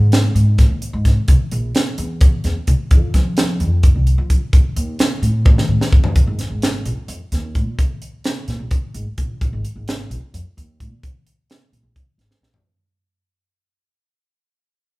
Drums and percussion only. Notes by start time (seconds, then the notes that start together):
0.12 snare, closed hi-hat
0.36 closed hi-hat
0.58 kick, snare, closed hi-hat
0.82 closed hi-hat
1.05 kick, snare, closed hi-hat
1.28 kick, closed hi-hat
1.52 closed hi-hat
1.75 snare, closed hi-hat
1.98 closed hi-hat
2.21 kick, closed hi-hat
2.44 snare, closed hi-hat
2.67 kick, closed hi-hat
2.91 kick, closed hi-hat
3.14 kick, snare, closed hi-hat
3.37 snare, closed hi-hat
3.60 closed hi-hat
3.83 kick, closed hi-hat
4.07 closed hi-hat
4.30 kick, closed hi-hat
4.53 kick, closed hi-hat
4.76 closed hi-hat
4.99 snare, closed hi-hat
5.23 closed hi-hat
5.45 kick, high tom
5.58 snare
5.81 snare
5.92 kick
6.04 floor tom
6.16 kick, closed hi-hat
6.39 snare, closed hi-hat
6.62 snare, closed hi-hat
6.85 closed hi-hat
7.08 closed hi-hat
7.32 snare, closed hi-hat
7.55 kick, closed hi-hat
7.79 kick, closed hi-hat
8.02 closed hi-hat
8.24 snare, closed hi-hat
8.48 snare, closed hi-hat
8.71 kick, closed hi-hat
8.94 closed hi-hat
9.18 kick, closed hi-hat
9.41 kick, closed hi-hat
9.65 closed hi-hat
9.88 snare, closed hi-hat
10.11 closed hi-hat
10.34 closed hi-hat
10.58 closed hi-hat
10.80 kick, closed hi-hat
11.03 kick, closed hi-hat
11.27 closed hi-hat
11.50 snare, closed hi-hat
11.73 closed hi-hat
11.96 kick, closed hi-hat
12.19 snare, closed hi-hat
12.31 snare
12.43 snare
12.54 floor tom